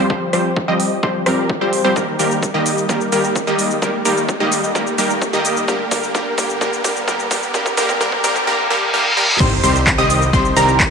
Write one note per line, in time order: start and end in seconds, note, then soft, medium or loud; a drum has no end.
0.00 riser medium
0.10 0.30 F3 medium
0.10 0.30 G3 medium
0.10 0.30 C4 medium
0.10 0.30 G4 medium
0.10 0.30 C5 medium
0.10 kick loud
0.33 0.65 F3 medium
0.33 0.65 G3 medium
0.33 0.65 C4 medium
0.33 0.65 G4 medium
0.33 0.65 C5 medium
0.33 cross-stick medium
0.33 open hi-hat loud
0.56 kick loud
0.68 1.00 F3 loud
0.68 1.00 G3 medium
0.68 1.00 C4 medium
0.68 1.00 G4 loud
0.68 1.00 D#5 loud
0.80 open hi-hat loud
1.03 1.23 F3 medium
1.03 1.23 G3 medium
1.03 1.23 C4 medium
1.03 1.23 G4 medium
1.03 1.23 C5 medium
1.03 kick loud
1.26 1.58 F3 loud
1.26 1.58 G3 medium
1.26 1.58 C4 medium
1.26 1.58 G4 medium
1.26 1.58 A#4 loud
1.26 cross-stick medium
1.26 open hi-hat loud
1.50 kick loud
1.61 1.82 F3 medium
1.61 1.82 G3 medium
1.61 1.82 C4 medium
1.61 1.82 G4 medium
1.61 1.82 C5 loud
1.73 open hi-hat loud
1.84 1.93 F3 medium
1.84 1.93 G3 medium
1.84 1.93 C4 medium
1.84 1.93 G4 medium
1.84 1.93 C5 medium
1.96 2.17 D#3 medium
1.96 2.17 G3 medium
1.96 2.17 A#3 medium
1.96 2.17 G4 medium
1.96 2.17 A#4 medium
1.96 kick loud
1.96 shaker soft
2.19 2.51 D#3 medium
2.19 2.51 G3 medium
2.19 2.51 A#3 medium
2.19 2.51 G4 medium
2.19 2.51 A#4 medium
2.19 open hi-hat loud
2.19 shaker medium
2.31 shaker soft
2.43 kick loud
2.43 shaker soft
2.54 2.86 D#3 medium
2.54 2.86 G3 medium
2.54 2.86 A#3 medium
2.54 2.86 G4 medium
2.54 2.86 D#5 loud
2.66 open hi-hat loud
2.66 shaker medium
2.78 shaker soft
2.89 3.10 D#3 medium
2.89 3.10 G3 medium
2.89 3.10 A#3 medium
2.89 3.10 G4 medium
2.89 3.10 A#4 medium
2.89 kick loud
2.89 shaker soft
3.01 shaker soft
3.12 3.44 D#3 medium
3.12 3.44 G3 medium
3.12 3.44 A#3 medium
3.12 3.44 G4 medium
3.12 3.44 A#4 medium
3.12 open hi-hat loud
3.12 shaker medium
3.24 shaker soft
3.36 kick loud
3.36 shaker soft
3.47 3.79 D#3 medium
3.47 3.79 G3 medium
3.47 3.79 A#3 medium
3.47 3.79 G4 medium
3.47 3.79 D#5 loud
3.47 shaker soft
3.59 open hi-hat loud
3.59 shaker medium
3.71 shaker soft
3.82 4.03 D#3 medium
3.82 4.03 G3 medium
3.82 4.03 A#3 medium
3.82 4.03 G4 medium
3.82 4.03 A#4 medium
3.82 kick loud
3.82 shaker soft
4.05 4.37 D#3 medium
4.05 4.37 G3 medium
4.05 4.37 A#3 medium
4.05 4.37 G4 medium
4.05 4.37 A#4 medium
4.05 open hi-hat loud
4.05 shaker medium
4.17 shaker soft
4.29 kick loud
4.29 shaker soft
4.40 4.72 D#3 medium
4.40 4.72 G3 medium
4.40 4.72 A#3 medium
4.40 4.72 G4 medium
4.40 4.72 D#5 loud
4.52 open hi-hat loud
4.52 shaker medium
4.64 shaker soft
4.75 4.96 D#3 medium
4.75 4.96 G3 medium
4.75 4.96 A#3 medium
4.75 4.96 G4 medium
4.75 4.96 A#4 medium
4.75 kick loud
4.75 shaker soft
4.87 shaker soft
4.98 5.30 D#3 medium
4.98 5.30 G3 medium
4.98 5.30 A#3 medium
4.98 5.30 G4 medium
4.98 5.30 A#4 medium
4.98 open hi-hat loud
4.98 shaker medium
5.10 shaker soft
5.22 kick loud
5.22 shaker soft
5.33 5.65 D#3 loud
5.33 5.65 G3 medium
5.33 5.65 A#3 medium
5.33 5.65 G4 medium
5.33 5.65 D#5 loud
5.33 shaker soft
5.45 open hi-hat loud
5.45 shaker medium
5.57 shaker soft
5.68 5.89 D3 medium
5.68 5.89 G3 medium
5.68 5.89 A#3 medium
5.68 5.89 G4 medium
5.68 5.89 A#4 medium
5.68 kick loud
5.68 shaker soft
5.91 6.13 D3 medium
5.91 6.13 G3 medium
5.91 6.13 A#3 medium
5.91 6.13 G4 medium
5.91 6.13 A#4 medium
5.91 kick loud
5.91 open hi-hat loud
5.91 shaker medium
6.03 shaker soft
6.15 6.35 D3 medium
6.15 6.35 G3 medium
6.15 6.35 A#3 medium
6.15 6.35 G4 medium
6.15 6.35 A#4 medium
6.15 kick loud
6.15 shaker soft
6.38 6.59 D3 medium
6.38 6.59 G3 medium
6.38 6.59 A#3 medium
6.38 6.59 G4 medium
6.38 6.59 A#4 medium
6.38 kick loud
6.38 open hi-hat loud
6.38 shaker medium
6.50 shaker soft
6.61 6.82 D3 medium
6.61 6.82 G3 medium
6.61 6.82 A#3 medium
6.61 6.82 G4 medium
6.61 6.82 A#4 medium
6.61 kick loud
6.61 shaker soft
6.73 shaker soft
6.84 7.06 D3 medium
6.84 7.06 G3 medium
6.84 7.06 A#3 medium
6.84 7.06 G4 medium
6.84 7.06 A#4 medium
6.84 kick loud
6.84 open hi-hat loud
6.84 shaker medium
6.96 shaker soft
7.08 7.28 D3 medium
7.08 7.28 G3 medium
7.08 7.28 A#3 medium
7.08 7.28 G4 medium
7.08 7.28 A#4 medium
7.08 kick loud
7.08 shaker soft
7.20 shaker soft
7.31 7.52 D3 medium
7.31 7.52 G3 medium
7.31 7.52 A#3 medium
7.31 7.52 G4 medium
7.31 7.52 A#4 medium
7.31 kick loud
7.31 open hi-hat loud
7.31 shaker medium
7.43 shaker soft
7.54 7.75 D3 medium
7.54 7.75 G3 medium
7.54 7.75 A#3 medium
7.54 7.75 G4 medium
7.54 7.75 A#4 medium
7.54 kick loud
7.54 shaker soft
7.66 kick medium
7.66 shaker soft
7.77 7.98 D3 medium
7.77 7.98 G3 medium
7.77 7.98 A#3 medium
7.77 7.98 G4 medium
7.77 7.98 A#4 loud
7.77 kick loud
7.77 open hi-hat loud
7.77 shaker medium
7.89 kick medium
7.89 shaker soft
8.01 8.21 D3 medium
8.01 8.21 G3 medium
8.01 8.21 A#3 medium
8.01 8.21 G4 medium
8.01 8.21 A#4 medium
8.01 kick loud
8.01 shaker soft
8.12 kick medium
8.24 8.44 D3 medium
8.24 8.44 G3 medium
8.24 8.44 A#3 medium
8.24 8.44 G4 medium
8.24 8.44 A#4 loud
8.24 kick loud
8.24 open hi-hat loud
8.24 shaker medium
8.36 kick medium
8.36 shaker soft
8.47 8.68 D3 medium
8.47 8.68 G3 medium
8.47 8.68 A#3 medium
8.47 8.68 G4 medium
8.47 8.68 A#4 medium
8.47 reverse cymbal medium
8.70 8.91 D3 medium
8.70 8.91 G3 medium
8.70 8.91 A#3 medium
8.70 8.91 G4 medium
8.70 8.91 A#4 medium
8.94 9.14 D3 medium
8.94 9.14 G3 medium
8.94 9.14 A#3 medium
8.94 9.14 G4 medium
8.94 9.14 A#4 medium
9.17 9.37 D3 medium
9.17 9.37 G3 medium
9.17 9.37 A#3 medium
9.17 9.37 G4 medium
9.17 9.37 A#4 medium
9.40 9.61 C2 loud
9.40 9.61 D#3 medium
9.40 9.61 G3 medium
9.40 9.61 C4 medium
9.40 9.61 G4 medium
9.40 9.61 C5 medium
9.40 9.61 C6 medium
9.40 kick loud
9.40 ride medium
9.40 crash loud
9.40 sub drop medium
9.40 shaker soft
9.63 9.96 C2 loud
9.63 9.96 D#3 medium
9.63 9.96 G3 medium
9.63 9.96 C4 medium
9.63 9.96 G4 medium
9.63 9.96 C5 medium
9.63 9.96 C6 medium
9.63 open hi-hat loud
9.63 shaker medium
9.75 shaker soft
9.87 kick loud
9.87 clap loud
9.87 ride medium
9.87 shaker soft
9.98 10.31 C2 medium
9.98 10.30 D#3 loud
9.98 10.30 G3 medium
9.98 10.30 C4 medium
9.98 10.30 G4 medium
9.98 10.30 D#5 loud
9.98 10.30 D#6 loud
10.10 open hi-hat loud
10.10 shaker medium
10.22 shaker soft
10.33 10.54 C2 loud
10.33 10.54 D#3 medium
10.33 10.54 G3 medium
10.33 10.54 C4 medium
10.33 10.54 G4 medium
10.33 10.54 C5 medium
10.33 10.54 C6 loud
10.33 kick loud
10.33 ride medium
10.33 shaker soft
10.45 shaker soft
10.56 10.89 C2 loud
10.56 10.89 D#3 loud
10.56 10.89 G3 medium
10.56 10.89 C4 medium
10.56 10.89 G4 medium
10.56 10.89 A#4 loud
10.56 10.89 A#5 loud
10.56 open hi-hat loud
10.56 shaker medium
10.68 shaker soft
10.80 kick loud
10.80 clap loud
10.80 ride medium
10.80 shaker soft